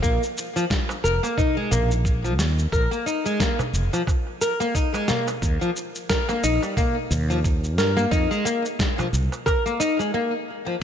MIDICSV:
0, 0, Header, 1, 5, 480
1, 0, Start_track
1, 0, Tempo, 674157
1, 21, Time_signature, 4, 2, 24, 8
1, 7711, End_track
2, 0, Start_track
2, 0, Title_t, "Nylon-string guitar"
2, 0, Program_c, 0, 24
2, 18, Note_on_c, 0, 58, 95
2, 148, Note_off_c, 0, 58, 0
2, 399, Note_on_c, 0, 53, 72
2, 457, Note_off_c, 0, 53, 0
2, 740, Note_on_c, 0, 70, 70
2, 862, Note_off_c, 0, 70, 0
2, 877, Note_on_c, 0, 58, 88
2, 971, Note_off_c, 0, 58, 0
2, 982, Note_on_c, 0, 63, 88
2, 1103, Note_off_c, 0, 63, 0
2, 1117, Note_on_c, 0, 56, 73
2, 1216, Note_off_c, 0, 56, 0
2, 1220, Note_on_c, 0, 58, 88
2, 1349, Note_off_c, 0, 58, 0
2, 1598, Note_on_c, 0, 53, 73
2, 1657, Note_off_c, 0, 53, 0
2, 1942, Note_on_c, 0, 70, 80
2, 2063, Note_off_c, 0, 70, 0
2, 2074, Note_on_c, 0, 58, 94
2, 2169, Note_off_c, 0, 58, 0
2, 2180, Note_on_c, 0, 63, 88
2, 2303, Note_off_c, 0, 63, 0
2, 2318, Note_on_c, 0, 56, 75
2, 2416, Note_off_c, 0, 56, 0
2, 2421, Note_on_c, 0, 58, 98
2, 2550, Note_off_c, 0, 58, 0
2, 2800, Note_on_c, 0, 53, 66
2, 2858, Note_off_c, 0, 53, 0
2, 3143, Note_on_c, 0, 70, 66
2, 3264, Note_off_c, 0, 70, 0
2, 3277, Note_on_c, 0, 58, 93
2, 3371, Note_off_c, 0, 58, 0
2, 3382, Note_on_c, 0, 63, 96
2, 3504, Note_off_c, 0, 63, 0
2, 3515, Note_on_c, 0, 56, 74
2, 3615, Note_off_c, 0, 56, 0
2, 3621, Note_on_c, 0, 58, 88
2, 3749, Note_off_c, 0, 58, 0
2, 3997, Note_on_c, 0, 53, 78
2, 4056, Note_off_c, 0, 53, 0
2, 4339, Note_on_c, 0, 70, 85
2, 4462, Note_off_c, 0, 70, 0
2, 4478, Note_on_c, 0, 58, 98
2, 4571, Note_off_c, 0, 58, 0
2, 4582, Note_on_c, 0, 63, 92
2, 4704, Note_off_c, 0, 63, 0
2, 4717, Note_on_c, 0, 55, 70
2, 4816, Note_off_c, 0, 55, 0
2, 4823, Note_on_c, 0, 58, 102
2, 4951, Note_off_c, 0, 58, 0
2, 5198, Note_on_c, 0, 53, 78
2, 5256, Note_off_c, 0, 53, 0
2, 5540, Note_on_c, 0, 70, 68
2, 5662, Note_off_c, 0, 70, 0
2, 5673, Note_on_c, 0, 58, 103
2, 5768, Note_off_c, 0, 58, 0
2, 5777, Note_on_c, 0, 63, 102
2, 5901, Note_off_c, 0, 63, 0
2, 5915, Note_on_c, 0, 56, 80
2, 6015, Note_off_c, 0, 56, 0
2, 6018, Note_on_c, 0, 58, 97
2, 6148, Note_off_c, 0, 58, 0
2, 6394, Note_on_c, 0, 53, 75
2, 6455, Note_off_c, 0, 53, 0
2, 6736, Note_on_c, 0, 70, 77
2, 6860, Note_off_c, 0, 70, 0
2, 6876, Note_on_c, 0, 58, 102
2, 6970, Note_off_c, 0, 58, 0
2, 6977, Note_on_c, 0, 63, 98
2, 7101, Note_off_c, 0, 63, 0
2, 7115, Note_on_c, 0, 56, 78
2, 7215, Note_off_c, 0, 56, 0
2, 7220, Note_on_c, 0, 58, 91
2, 7349, Note_off_c, 0, 58, 0
2, 7593, Note_on_c, 0, 53, 75
2, 7654, Note_off_c, 0, 53, 0
2, 7711, End_track
3, 0, Start_track
3, 0, Title_t, "Fretless electric bass"
3, 0, Program_c, 1, 35
3, 20, Note_on_c, 1, 34, 99
3, 122, Note_off_c, 1, 34, 0
3, 742, Note_on_c, 1, 29, 78
3, 843, Note_off_c, 1, 29, 0
3, 1222, Note_on_c, 1, 34, 92
3, 1698, Note_off_c, 1, 34, 0
3, 1698, Note_on_c, 1, 39, 79
3, 1887, Note_off_c, 1, 39, 0
3, 1939, Note_on_c, 1, 34, 98
3, 2042, Note_off_c, 1, 34, 0
3, 2658, Note_on_c, 1, 29, 75
3, 2761, Note_off_c, 1, 29, 0
3, 3861, Note_on_c, 1, 39, 95
3, 3963, Note_off_c, 1, 39, 0
3, 4582, Note_on_c, 1, 34, 74
3, 4683, Note_off_c, 1, 34, 0
3, 5060, Note_on_c, 1, 39, 92
3, 5541, Note_off_c, 1, 39, 0
3, 5541, Note_on_c, 1, 43, 86
3, 5729, Note_off_c, 1, 43, 0
3, 5780, Note_on_c, 1, 41, 105
3, 5882, Note_off_c, 1, 41, 0
3, 6499, Note_on_c, 1, 36, 81
3, 6602, Note_off_c, 1, 36, 0
3, 7711, End_track
4, 0, Start_track
4, 0, Title_t, "Darbuka"
4, 634, Note_on_c, 9, 63, 85
4, 706, Note_off_c, 9, 63, 0
4, 879, Note_on_c, 9, 62, 65
4, 951, Note_off_c, 9, 62, 0
4, 991, Note_on_c, 9, 64, 85
4, 1062, Note_off_c, 9, 64, 0
4, 1225, Note_on_c, 9, 64, 81
4, 1296, Note_off_c, 9, 64, 0
4, 2557, Note_on_c, 9, 63, 74
4, 2559, Note_on_c, 9, 64, 86
4, 2628, Note_off_c, 9, 63, 0
4, 2631, Note_off_c, 9, 64, 0
4, 2801, Note_on_c, 9, 62, 69
4, 2872, Note_off_c, 9, 62, 0
4, 2903, Note_on_c, 9, 63, 72
4, 2974, Note_off_c, 9, 63, 0
4, 3038, Note_on_c, 9, 62, 38
4, 3110, Note_off_c, 9, 62, 0
4, 3283, Note_on_c, 9, 62, 43
4, 3354, Note_off_c, 9, 62, 0
4, 3520, Note_on_c, 9, 63, 70
4, 3591, Note_off_c, 9, 63, 0
4, 3629, Note_on_c, 9, 62, 44
4, 3632, Note_on_c, 9, 64, 81
4, 3700, Note_off_c, 9, 62, 0
4, 3703, Note_off_c, 9, 64, 0
4, 3757, Note_on_c, 9, 63, 67
4, 3828, Note_off_c, 9, 63, 0
4, 4476, Note_on_c, 9, 63, 69
4, 4547, Note_off_c, 9, 63, 0
4, 4717, Note_on_c, 9, 62, 67
4, 4788, Note_off_c, 9, 62, 0
4, 4819, Note_on_c, 9, 64, 77
4, 4890, Note_off_c, 9, 64, 0
4, 5064, Note_on_c, 9, 64, 82
4, 5135, Note_off_c, 9, 64, 0
4, 6158, Note_on_c, 9, 62, 34
4, 6229, Note_off_c, 9, 62, 0
4, 6401, Note_on_c, 9, 63, 78
4, 6402, Note_on_c, 9, 64, 76
4, 6472, Note_off_c, 9, 63, 0
4, 6473, Note_off_c, 9, 64, 0
4, 6637, Note_on_c, 9, 62, 72
4, 6708, Note_off_c, 9, 62, 0
4, 6745, Note_on_c, 9, 63, 67
4, 6816, Note_off_c, 9, 63, 0
4, 6878, Note_on_c, 9, 62, 34
4, 6949, Note_off_c, 9, 62, 0
4, 7121, Note_on_c, 9, 62, 49
4, 7192, Note_off_c, 9, 62, 0
4, 7711, End_track
5, 0, Start_track
5, 0, Title_t, "Drums"
5, 21, Note_on_c, 9, 36, 101
5, 27, Note_on_c, 9, 82, 44
5, 92, Note_off_c, 9, 36, 0
5, 98, Note_off_c, 9, 82, 0
5, 164, Note_on_c, 9, 82, 28
5, 235, Note_off_c, 9, 82, 0
5, 268, Note_on_c, 9, 82, 77
5, 339, Note_off_c, 9, 82, 0
5, 402, Note_on_c, 9, 82, 33
5, 474, Note_off_c, 9, 82, 0
5, 500, Note_on_c, 9, 36, 103
5, 505, Note_on_c, 9, 38, 69
5, 508, Note_on_c, 9, 82, 43
5, 572, Note_off_c, 9, 36, 0
5, 576, Note_off_c, 9, 38, 0
5, 579, Note_off_c, 9, 82, 0
5, 643, Note_on_c, 9, 82, 28
5, 715, Note_off_c, 9, 82, 0
5, 747, Note_on_c, 9, 82, 71
5, 818, Note_off_c, 9, 82, 0
5, 884, Note_on_c, 9, 82, 30
5, 955, Note_off_c, 9, 82, 0
5, 980, Note_on_c, 9, 36, 105
5, 986, Note_on_c, 9, 82, 43
5, 1051, Note_off_c, 9, 36, 0
5, 1057, Note_off_c, 9, 82, 0
5, 1225, Note_on_c, 9, 82, 68
5, 1297, Note_off_c, 9, 82, 0
5, 1362, Note_on_c, 9, 82, 33
5, 1433, Note_off_c, 9, 82, 0
5, 1459, Note_on_c, 9, 36, 99
5, 1466, Note_on_c, 9, 82, 42
5, 1531, Note_off_c, 9, 36, 0
5, 1538, Note_off_c, 9, 82, 0
5, 1602, Note_on_c, 9, 82, 29
5, 1673, Note_off_c, 9, 82, 0
5, 1701, Note_on_c, 9, 38, 68
5, 1705, Note_on_c, 9, 82, 70
5, 1772, Note_off_c, 9, 38, 0
5, 1776, Note_off_c, 9, 82, 0
5, 1843, Note_on_c, 9, 82, 31
5, 1914, Note_off_c, 9, 82, 0
5, 1939, Note_on_c, 9, 36, 100
5, 1946, Note_on_c, 9, 82, 43
5, 2011, Note_off_c, 9, 36, 0
5, 2018, Note_off_c, 9, 82, 0
5, 2082, Note_on_c, 9, 82, 26
5, 2153, Note_off_c, 9, 82, 0
5, 2187, Note_on_c, 9, 82, 71
5, 2258, Note_off_c, 9, 82, 0
5, 2321, Note_on_c, 9, 82, 30
5, 2392, Note_off_c, 9, 82, 0
5, 2420, Note_on_c, 9, 36, 103
5, 2423, Note_on_c, 9, 38, 73
5, 2427, Note_on_c, 9, 82, 42
5, 2491, Note_off_c, 9, 36, 0
5, 2494, Note_off_c, 9, 38, 0
5, 2498, Note_off_c, 9, 82, 0
5, 2562, Note_on_c, 9, 82, 30
5, 2633, Note_off_c, 9, 82, 0
5, 2664, Note_on_c, 9, 82, 69
5, 2736, Note_off_c, 9, 82, 0
5, 2801, Note_on_c, 9, 82, 30
5, 2873, Note_off_c, 9, 82, 0
5, 2900, Note_on_c, 9, 36, 103
5, 2909, Note_on_c, 9, 82, 41
5, 2971, Note_off_c, 9, 36, 0
5, 2980, Note_off_c, 9, 82, 0
5, 3144, Note_on_c, 9, 82, 67
5, 3216, Note_off_c, 9, 82, 0
5, 3281, Note_on_c, 9, 82, 34
5, 3352, Note_off_c, 9, 82, 0
5, 3381, Note_on_c, 9, 36, 92
5, 3384, Note_on_c, 9, 82, 41
5, 3452, Note_off_c, 9, 36, 0
5, 3456, Note_off_c, 9, 82, 0
5, 3519, Note_on_c, 9, 82, 30
5, 3590, Note_off_c, 9, 82, 0
5, 3617, Note_on_c, 9, 38, 69
5, 3621, Note_on_c, 9, 82, 68
5, 3688, Note_off_c, 9, 38, 0
5, 3692, Note_off_c, 9, 82, 0
5, 3757, Note_on_c, 9, 82, 31
5, 3828, Note_off_c, 9, 82, 0
5, 3860, Note_on_c, 9, 36, 94
5, 3863, Note_on_c, 9, 82, 41
5, 3932, Note_off_c, 9, 36, 0
5, 3934, Note_off_c, 9, 82, 0
5, 3999, Note_on_c, 9, 82, 28
5, 4070, Note_off_c, 9, 82, 0
5, 4103, Note_on_c, 9, 82, 67
5, 4174, Note_off_c, 9, 82, 0
5, 4239, Note_on_c, 9, 82, 32
5, 4310, Note_off_c, 9, 82, 0
5, 4339, Note_on_c, 9, 38, 72
5, 4340, Note_on_c, 9, 36, 106
5, 4343, Note_on_c, 9, 82, 41
5, 4411, Note_off_c, 9, 38, 0
5, 4412, Note_off_c, 9, 36, 0
5, 4414, Note_off_c, 9, 82, 0
5, 4480, Note_on_c, 9, 82, 28
5, 4551, Note_off_c, 9, 82, 0
5, 4583, Note_on_c, 9, 82, 74
5, 4655, Note_off_c, 9, 82, 0
5, 4719, Note_on_c, 9, 82, 31
5, 4790, Note_off_c, 9, 82, 0
5, 4820, Note_on_c, 9, 36, 95
5, 4825, Note_on_c, 9, 82, 39
5, 4892, Note_off_c, 9, 36, 0
5, 4896, Note_off_c, 9, 82, 0
5, 5065, Note_on_c, 9, 82, 68
5, 5136, Note_off_c, 9, 82, 0
5, 5199, Note_on_c, 9, 82, 30
5, 5271, Note_off_c, 9, 82, 0
5, 5300, Note_on_c, 9, 36, 102
5, 5304, Note_on_c, 9, 82, 42
5, 5372, Note_off_c, 9, 36, 0
5, 5375, Note_off_c, 9, 82, 0
5, 5441, Note_on_c, 9, 82, 29
5, 5512, Note_off_c, 9, 82, 0
5, 5541, Note_on_c, 9, 38, 73
5, 5544, Note_on_c, 9, 82, 66
5, 5612, Note_off_c, 9, 38, 0
5, 5615, Note_off_c, 9, 82, 0
5, 5681, Note_on_c, 9, 82, 31
5, 5753, Note_off_c, 9, 82, 0
5, 5780, Note_on_c, 9, 36, 96
5, 5786, Note_on_c, 9, 82, 43
5, 5852, Note_off_c, 9, 36, 0
5, 5857, Note_off_c, 9, 82, 0
5, 5922, Note_on_c, 9, 82, 27
5, 5994, Note_off_c, 9, 82, 0
5, 6026, Note_on_c, 9, 82, 69
5, 6097, Note_off_c, 9, 82, 0
5, 6162, Note_on_c, 9, 82, 30
5, 6234, Note_off_c, 9, 82, 0
5, 6260, Note_on_c, 9, 36, 105
5, 6264, Note_on_c, 9, 38, 76
5, 6268, Note_on_c, 9, 82, 44
5, 6332, Note_off_c, 9, 36, 0
5, 6336, Note_off_c, 9, 38, 0
5, 6339, Note_off_c, 9, 82, 0
5, 6402, Note_on_c, 9, 82, 29
5, 6474, Note_off_c, 9, 82, 0
5, 6505, Note_on_c, 9, 82, 66
5, 6576, Note_off_c, 9, 82, 0
5, 6640, Note_on_c, 9, 82, 30
5, 6711, Note_off_c, 9, 82, 0
5, 6741, Note_on_c, 9, 36, 97
5, 6743, Note_on_c, 9, 82, 41
5, 6812, Note_off_c, 9, 36, 0
5, 6815, Note_off_c, 9, 82, 0
5, 6880, Note_on_c, 9, 82, 27
5, 6952, Note_off_c, 9, 82, 0
5, 6983, Note_on_c, 9, 82, 68
5, 7054, Note_off_c, 9, 82, 0
5, 7119, Note_on_c, 9, 82, 32
5, 7191, Note_off_c, 9, 82, 0
5, 7711, End_track
0, 0, End_of_file